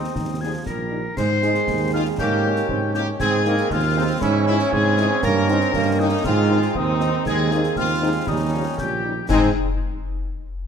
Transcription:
0.00 0.36 C4 loud
0.00 0.87 C4 loud
0.00 0.37 D#4 loud
0.00 0.42 D#6 loud
0.16 0.58 D#2 medium
0.16 concert bass drum loud
0.16 snare medium
0.40 0.66 F3 medium
0.40 0.50 G3 medium
0.40 0.50 D#4 medium
0.40 0.53 G#4 medium
0.40 0.65 G#6 medium
0.66 1.08 A#1 medium
0.66 1.03 G3 medium
0.66 1.14 A#4 loud
0.66 1.18 A#6 medium
0.66 concert bass drum medium
0.66 snare medium
0.92 1.01 G3 medium
0.92 1.01 D#4 medium
1.16 1.59 G#2 loud
1.16 3.17 D#3 medium
1.16 1.29 G#3 loud
1.16 1.89 C5 loud
1.16 1.92 C7 loud
1.16 concert bass drum loud
1.16 snare medium
1.16 crash medium
1.42 2.14 G#3 loud
1.42 1.52 G#3 medium
1.42 1.52 D#4 medium
1.42 snare medium
1.55 snare medium
1.67 2.10 D#2 loud
1.67 concert bass drum loud
1.67 snare medium
1.93 2.03 G#3 medium
1.93 2.03 D#4 medium
1.93 2.05 F4 loud
1.93 1.99 F6 medium
2.18 2.61 G#2 loud
2.18 2.66 A#3 loud
2.18 3.16 C#4 loud
2.18 2.90 G4 loud
2.18 2.91 G6 loud
2.18 concert bass drum loud
2.18 snare medium
2.44 2.54 A#3 medium
2.44 2.53 C#4 medium
2.44 2.53 D#4 medium
2.56 snare medium
2.69 3.12 G#2 loud
2.69 2.81 C4 loud
2.69 concert bass drum medium
2.94 3.04 A#3 medium
2.94 3.04 C#4 medium
2.94 3.07 C#4 loud
2.94 3.04 D#4 medium
2.94 3.06 G4 loud
2.94 3.00 G6 loud
2.94 snare medium
3.19 3.62 G#2 loud
3.19 4.17 D#3 medium
3.19 4.21 C4 loud
3.19 3.44 C4 loud
3.19 3.67 G#4 loud
3.19 3.67 G#6 loud
3.19 concert bass drum loud
3.19 snare medium
3.19 crash soft
3.45 3.55 G#3 medium
3.45 3.69 A#3 loud
3.45 3.55 C4 medium
3.45 3.55 D#4 medium
3.45 snare medium
3.58 snare medium
3.70 4.13 D#2 loud
3.70 3.82 G#3 loud
3.70 4.22 F4 loud
3.70 4.18 F6 loud
3.70 concert bass drum medium
3.70 snare medium
3.96 4.05 G#3 loud
3.96 4.06 C4 loud
3.96 4.20 C4 loud
3.96 4.05 D#4 loud
4.21 4.64 G#2 loud
4.21 5.19 E3 loud
4.21 4.74 C#4 loud
4.21 6.21 C#4 loud
4.21 4.45 E4 loud
4.21 4.45 E6 loud
4.21 concert bass drum medium
4.21 snare medium
4.46 4.56 G#3 loud
4.46 4.57 C#4 medium
4.46 4.70 E4 loud
4.46 4.56 E4 loud
4.46 4.71 E6 loud
4.59 snare medium
4.72 5.10 G#2 loud
4.72 5.26 C4 loud
4.72 5.23 G#4 loud
4.72 5.26 G#6 loud
4.72 concert bass drum medium
4.97 5.07 G#3 loud
4.97 5.07 C#4 loud
4.97 5.07 E4 loud
4.97 snare medium
5.23 5.65 G2 loud
5.23 7.25 D#3 loud
5.23 5.51 A#3 loud
5.23 5.95 A#4 loud
5.23 6.01 A#6 loud
5.23 concert bass drum loud
5.23 snare medium
5.23 crash soft
5.48 5.58 D#3 medium
5.48 5.74 C4 loud
5.48 5.58 C#4 loud
5.48 5.58 D#4 loud
5.48 snare medium
5.61 snare medium
5.73 6.16 G2 loud
5.73 6.27 A#3 loud
5.73 concert bass drum medium
5.73 snare medium
5.99 6.09 D#3 loud
5.99 6.08 C#4 medium
5.99 6.08 D#4 loud
5.99 6.25 D#4 loud
5.99 6.26 D#6 loud
6.24 6.67 G#2 loud
6.24 6.78 G#3 loud
6.24 8.24 C4 loud
6.24 6.72 F4 loud
6.24 6.57 F6 loud
6.24 concert bass drum loud
6.24 snare medium
6.50 6.60 D#3 loud
6.50 6.60 C4 loud
6.50 6.59 D#4 medium
6.62 snare medium
6.75 7.18 D#2 loud
6.75 7.26 C4 loud
6.75 7.26 D#4 loud
6.75 7.22 D#6 loud
6.75 concert bass drum medium
7.00 7.10 D#3 loud
7.00 7.10 C4 medium
7.00 7.10 D#4 loud
7.00 snare medium
7.26 7.68 D#2 loud
7.26 8.24 D#3 loud
7.26 7.53 G#3 loud
7.26 7.74 G#4 loud
7.26 7.73 G#6 loud
7.26 concert bass drum medium
7.26 snare medium
7.26 crash soft
7.51 7.61 D#3 medium
7.51 7.77 A#3 loud
7.51 7.61 C4 medium
7.51 7.61 D#4 medium
7.51 snare medium
7.64 snare medium
7.76 8.19 D#2 loud
7.76 7.89 C4 loud
7.76 8.25 F4 loud
7.76 8.24 F6 loud
7.76 concert bass drum medium
7.76 snare medium
8.02 8.11 D#3 medium
8.02 8.26 G#3 loud
8.02 8.11 C4 medium
8.02 8.11 D#4 loud
8.27 8.70 D#2 loud
8.27 8.39 G3 loud
8.27 9.04 G3 medium
8.27 9.00 C#4 loud
8.27 8.78 D#4 loud
8.27 8.75 D#6 medium
8.27 concert bass drum loud
8.27 snare medium
8.53 8.64 F3 loud
8.53 8.62 G3 medium
8.53 8.63 C#4 medium
8.53 8.62 D#4 medium
8.78 9.21 A#1 medium
8.78 8.90 D#3 medium
8.78 9.29 G4 loud
8.78 9.26 G6 loud
8.78 concert bass drum medium
8.78 snare medium
9.04 9.13 G3 medium
9.04 9.13 C#4 medium
9.04 9.13 D#4 medium
9.29 9.51 G#2 loud
9.29 9.50 G#3 loud
9.29 9.50 C4 loud
9.29 9.50 D#4 loud
9.29 9.50 G#4 loud
9.29 9.57 G#5 loud
9.29 concert bass drum loud
9.29 snare loud
9.29 crash medium

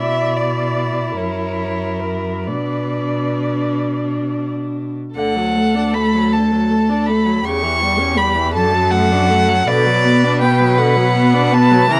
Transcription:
0.00 1.18 B2 soft
0.00 2.49 E4 soft
0.00 1.17 D5 medium
0.00 0.38 E5 medium
0.37 1.18 D5 medium
1.17 2.50 F#2 soft
1.17 2.48 A#4 medium
1.17 2.03 C#5 medium
2.01 2.48 A#4 medium
2.47 4.96 B2 soft
2.47 4.96 D4 soft
2.47 3.82 B4 medium
2.47 4.51 D5 medium
5.16 7.41 D2 medium
5.16 5.38 D3 medium
5.16 7.40 A4 medium
5.16 5.95 F#5 medium
5.36 5.58 F#3 medium
5.56 5.77 A3 medium
5.75 5.96 D4 medium
5.94 6.17 A3 medium
5.94 6.34 B5 medium
6.15 6.36 F#3 medium
6.32 6.53 D3 medium
6.32 7.08 A5 medium
6.52 6.72 F#3 medium
6.70 6.91 A3 medium
6.89 7.11 D4 medium
7.07 7.28 A3 medium
7.07 7.46 B5 medium
7.26 7.45 F#3 medium
7.44 8.56 E2 medium
7.44 7.65 C#3 medium
7.44 8.52 G4 medium
7.44 8.19 C#6 loud
7.63 7.84 E3 medium
7.82 8.01 G3 medium
7.99 8.19 C#4 medium
8.18 8.37 G3 medium
8.18 8.53 B5 loud
8.36 8.53 E3 medium
8.54 9.67 F#2 medium
8.54 8.75 D3 medium
8.54 9.66 A4 medium
8.54 8.93 A5 loud
8.73 8.93 F#3 medium
8.91 9.13 A3 medium
8.91 9.69 F#5 loud
9.11 9.32 D4 medium
9.30 9.50 A3 medium
9.49 9.67 F#3 medium
9.68 11.87 B2 medium
9.68 9.88 D3 medium
9.68 11.92 B4 medium
9.68 10.40 D5 loud
9.87 10.06 F#3 medium
10.05 10.26 B3 medium
10.24 10.43 D4 medium
10.41 10.62 B3 medium
10.41 10.79 G5 loud
10.61 10.80 F#3 medium
10.78 10.98 D3 medium
10.78 11.55 F#5 medium
10.97 11.16 F#3 medium
11.14 11.35 B3 medium
11.34 11.54 D4 medium
11.52 11.73 B3 medium
11.52 11.93 A5 loud
11.72 11.89 F#3 medium
11.90 12.00 C#3 medium
11.90 12.00 E3 loud
11.90 12.00 A#4 medium
11.90 12.00 A#5 loud

